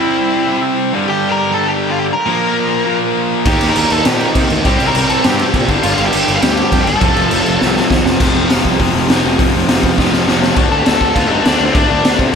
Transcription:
Already playing: distorted electric guitar C3 G3 C4, lead electric guitar E4 E5
0.47 distorted electric guitar C3 G3 C4
0.92 distorted electric guitar G2 D3 G3
1.08 lead electric guitar G4 G5
1.30 lead electric guitar A#4 A#5
1.38 lead electric guitar A#4 A#5
1.52 distorted electric guitar G2 D3 G3, lead electric guitar A4 A5
1.69 lead electric guitar G4 G5
1.91 lead electric guitar F4 F5
1.99 lead electric guitar G4 G5
2.13 lead electric guitar A#4 A#5
2.26 distorted electric guitar A#2 F3 A#3
2.85 distorted electric guitar A#2 F3 A#3
3.45 picked electric bass D#2, distorted electric guitar D#3 A#3 D#4, lead electric guitar G4 G5, kick, crash
3.61 picked electric bass D#2, crash
3.69 lead electric guitar A#4 A#5
3.76 picked electric bass D#2, lead electric guitar A#4 A#5, crash
3.90 picked electric bass D#2, lead electric guitar A4 A5, crash
4.04 picked electric bass A#2, distorted electric guitar D#3 A#3 D#4, lead electric guitar G4 G5, snare, crash
4.21 crash
4.35 picked electric bass C3, kick, crash
4.50 picked electric bass D2, crash
4.64 picked electric bass C2, distorted electric guitar C3 G3 C4, lead electric guitar G4 G5, kick, crash
4.80 picked electric bass C2, crash
4.87 lead electric guitar A#4 A#5
4.95 picked electric bass C2, lead electric guitar A#4 A#5, crash
5.09 picked electric bass C2, lead electric guitar A4 A5, crash
5.24 picked electric bass G2, distorted electric guitar C3 G3 C4, lead electric guitar G4 G5, snare, crash
5.39 crash
5.54 picked electric bass A#2, kick, crash
5.68 picked electric bass G1, distorted electric guitar G2 D3 G3, kick, crash
5.82 picked electric bass G1, lead electric guitar F4 F5, crash
5.97 picked electric bass G1, lead electric guitar F5, crash
6.05 lead electric guitar G4 G5
6.13 picked electric bass G1, crash
6.27 picked electric bass G1, distorted electric guitar G2 D3 G3, crash
6.35 lead electric guitar F5
6.41 picked electric bass D2, lead electric guitar G4 G5, snare, crash
6.57 crash
6.72 picked electric bass F2, kick, crash
6.84 picked electric bass G1, lead electric guitar A4 A5, crash
7.01 picked electric bass F1, distorted electric guitar F2 C3 F3, kick, crash
7.17 picked electric bass F1, crash
7.31 picked electric bass F1, crash
7.46 picked electric bass F1, crash
7.60 picked electric bass C2, distorted electric guitar F2 C3 F3, snare
7.76 snare
7.90 picked electric bass D#2, kick, snare
8.06 picked electric bass F1, snare
8.20 picked electric bass F1, distorted electric guitar F2 C3 F3, kick, crash
8.35 picked electric bass F1
8.50 picked electric bass F1, distorted electric guitar F2 C3 F3, snare, open hi-hat
8.65 picked electric bass C2, kick
8.80 picked electric bass F1, distorted electric guitar F2 C3 F3, kick, open hi-hat
8.95 picked electric bass F1
9.09 picked electric bass F1, distorted electric guitar F2 C3 F3, snare, open hi-hat
9.25 picked electric bass F1
9.39 picked electric bass F1, distorted electric guitar F2 C3 F3, kick, open hi-hat
9.54 picked electric bass F1
9.68 picked electric bass F1, distorted electric guitar F2 C3 F3, snare, open hi-hat
9.83 picked electric bass F1, kick
9.98 picked electric bass F1, distorted electric guitar F2 C3 F3, kick, snare
10.13 picked electric bass F1, snare
10.27 picked electric bass F1, distorted electric guitar F2 C3 F3, snare
10.42 snare
10.56 picked electric bass D2, distorted electric guitar D3 A3 D4, kick, crash
10.71 picked electric bass D2, lead electric guitar A4 A5
10.79 lead electric guitar G4 G5
10.85 picked electric bass D2, lead electric guitar A4 A5, snare, crash
11.01 picked electric bass D2, kick
11.14 picked electric bass D2, lead electric guitar F4 F5, kick, crash
11.27 picked electric bass G2, distorted electric guitar D4, lead electric guitar D#4 D#5
11.31 distorted electric guitar D3 A3
11.42 distorted electric guitar D3, lead electric guitar D4 D5, crash
11.46 picked electric bass D2, distorted electric guitar A3 D4, snare
11.60 picked electric bass D2
11.65 lead electric guitar C4 C5
11.73 picked electric bass D2, distorted electric guitar D3 A3, lead electric guitar D4 D5, kick, crash
11.78 distorted electric guitar D4
11.88 picked electric bass D2, lead electric guitar D4 D5
12.05 picked electric bass D2, snare, crash
12.19 picked electric bass C3, kick

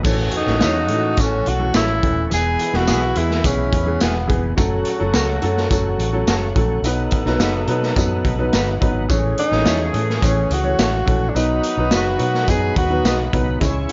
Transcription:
0.03 fingered electric bass A1, horn section C#3 A3 F#4, upright piano E3 A3 C#4 A4, tonewheel organ A4 C#5, kick, crash, tambourine
0.32 closed hi-hat
0.37 tenor saxophone D#4
0.47 fingered electric bass A1, upright piano E3 A3 C#4 A4, snare
0.61 fingered electric bass E2, clean electric guitar E4 A4 C#5, snare, closed hi-hat, tambourine
0.88 fingered electric bass A2, upright piano E3 A3 C#4 A4, closed hi-hat
1.17 fingered electric bass A1, upright piano E3 A3 C#4 A4, tenor saxophone C#4, kick, closed hi-hat, tambourine
1.46 fingered electric bass B1, tenor saxophone F#4, closed hi-hat
1.59 upright piano E3 A3 C#4 A4
1.74 fingered electric bass A1, clean electric guitar E4 A4 C#5, tenor saxophone E4, snare, closed hi-hat, tambourine
2.03 fingered electric bass D#1, upright piano E3 A3 C#4 A4, kick, closed hi-hat
2.30 fingered electric bass E1, horn section B2 G#3 E4, upright piano E3 G#3 B3 G#4, tonewheel organ G#4 B4, closed hi-hat, tambourine
2.34 tenor saxophone G#4
2.59 closed hi-hat
2.73 fingered electric bass E1, upright piano E3 G#3 B3 G#4, tenor saxophone F#4, snare
2.87 fingered electric bass B1, clean electric guitar B3 E4 G#4, snare, closed hi-hat, tambourine
3.16 fingered electric bass E2, upright piano E3 G#3 B3 G#4, tenor saxophone E4, closed hi-hat
3.31 snare
3.44 fingered electric bass B1, upright piano E3 G#3 B3 G#4, tenor saxophone C#4, kick, closed hi-hat, tambourine
3.73 fingered electric bass E2, kick, closed hi-hat
3.86 upright piano E3 G#3 B3 G#4
4.00 fingered electric bass E1, clean electric guitar B3 E4 G#4, tenor saxophone B3, snare, closed hi-hat, tambourine
4.27 fingered electric bass F1, upright piano E3 G#3 B3 G#4, kick, closed hi-hat
4.56 fingered electric bass F#1, horn section C#3 A3 F#4, upright piano F#3 A3 C#4 A4, tonewheel organ A4 C#5 F#5, kick, closed hi-hat, tambourine
4.85 closed hi-hat
4.99 fingered electric bass F#1, upright piano F#3 A3 C#4 A4
5.14 fingered electric bass C#2, clean electric guitar F#4 A4 C#5, snare, closed hi-hat, tambourine
5.42 fingered electric bass F#2, upright piano F#3 A3 C#4 A4, closed hi-hat
5.57 snare
5.70 fingered electric bass F#1, upright piano F#3 A3 C#4 A4, kick, closed hi-hat, tambourine
5.99 fingered electric bass A1, closed hi-hat
6.13 upright piano F#3 A3 C#4 A4
6.27 fingered electric bass F#1, clean electric guitar F#4 A4 C#5, snare, closed hi-hat, tambourine
6.55 fingered electric bass A#1, upright piano F#3 A3 C#4 A4, kick, closed hi-hat
6.82 fingered electric bass B1, horn section F#3 D#4 A4, upright piano F#3 B3 D#4 B4, tonewheel organ B4 D#5, closed hi-hat, tambourine
7.11 kick, closed hi-hat
7.25 fingered electric bass B1, upright piano F#3 B3 D#4 B4, snare
7.39 fingered electric bass F#1, clean electric guitar D#4 F#4 B4, snare, closed hi-hat, tambourine
7.67 fingered electric bass B2, upright piano F#3 B3 D#4 B4, closed hi-hat
7.83 snare
7.96 fingered electric bass F#2, upright piano F#3 B3 D#4 B4, kick, closed hi-hat, tambourine
8.25 fingered electric bass B1, kick, closed hi-hat
8.39 upright piano F#3 B3 D#4 B4
8.53 fingered electric bass G1, clean electric guitar D#4 F#4 B4, snare, closed hi-hat, tambourine
8.81 fingered electric bass G#1, upright piano F#3 B3 D#4 B4, kick, closed hi-hat
9.08 fingered electric bass A1, upright piano E3 A3 C#4 C#5, horn section E3 C#4 G#4, tonewheel organ C#5, kick, closed hi-hat, tambourine
9.38 tenor saxophone D#4, closed hi-hat
9.51 fingered electric bass A1, upright piano E3 A3 C#4 C#5, snare
9.65 fingered electric bass E2, clean electric guitar E4 A4 C#5, snare, closed hi-hat, tambourine
9.93 fingered electric bass A2, upright piano E3 A3 C#4 A4, closed hi-hat
10.10 snare
10.22 fingered electric bass A1, upright piano E3 A3 C#4 C#5, tenor saxophone C#4, kick, closed hi-hat, tambourine
10.50 fingered electric bass C#2, tenor saxophone F#4, closed hi-hat
10.64 upright piano E3 A3 C#4 C#5
10.79 fingered electric bass A1, clean electric guitar E4 A4 C#5, snare, closed hi-hat, tambourine
11.06 fingered electric bass A#1, upright piano E3 A3 C#4 A4, kick, closed hi-hat
11.29 tenor saxophone D4
11.34 fingered electric bass B1, horn section D#3 B3 F#4, upright piano F#3 B3 D#4 B4, tenor saxophone D#4, tonewheel organ D#5 F#5 B5, closed hi-hat, tambourine
11.63 closed hi-hat
11.77 fingered electric bass B1, upright piano F#3 B3 D#4 B4
11.91 fingered electric bass F#1, clean electric guitar F#4 B4 D#5, snare, closed hi-hat, tambourine
11.95 tenor saxophone F#4
12.18 fingered electric bass B2, upright piano F#3 B3 D#4 B4, closed hi-hat
12.35 snare
12.47 fingered electric bass F#2, upright piano F#3 B3 D#4 B4, tenor saxophone G#4, kick, closed hi-hat, tambourine
12.76 fingered electric bass D#2, tenor saxophone F#4, kick, closed hi-hat
12.90 upright piano F#3 B3 D#4 B4
13.04 fingered electric bass B1, clean electric guitar F#4 B4 D#5, snare, closed hi-hat, tambourine
13.33 fingered electric bass C2, upright piano F#3 B3 D#4 B4, kick, closed hi-hat
13.60 fingered electric bass C#2, horn section C#3 G#3 E4, upright piano G#3 C#4 E4 C#5, tonewheel organ E5 G#5 C#6, kick, closed hi-hat, tambourine
13.89 closed hi-hat

